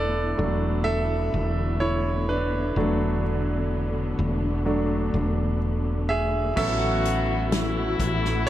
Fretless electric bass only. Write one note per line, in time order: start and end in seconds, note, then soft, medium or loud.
0.00 0.34 E1 medium
0.39 1.30 E1 medium
1.34 2.72 E1 medium
2.76 4.15 E1 medium
4.19 5.10 E1 medium
5.14 6.53 E1 medium
6.57 7.96 A1 loud
8.00 8.49 A1 loud